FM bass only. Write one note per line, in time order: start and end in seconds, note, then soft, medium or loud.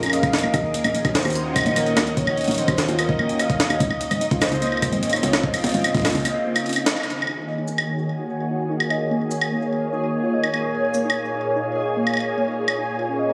0.00 0.35 F2 medium
0.33 0.42 G#1 medium
0.44 0.52 A#1 medium
0.54 0.82 D#2 loud
0.84 0.93 A#1 loud
1.05 1.22 D#2 medium
1.25 1.63 D#2 loud
1.66 1.94 A#1 loud
1.97 2.45 D#2 medium
2.48 2.56 A#1 loud
2.68 2.85 D#2 medium
2.88 3.27 D#2 loud
3.70 3.79 D#2 medium
3.80 4.08 C#2 loud
4.11 4.19 G#1 loud
4.31 4.48 C#2 medium
4.52 4.90 C#2 loud
4.92 5.21 G#1 loud
5.23 5.71 C#2 medium
5.74 5.83 G#1 loud
5.95 6.12 C#2 medium
6.15 6.25 C#2 loud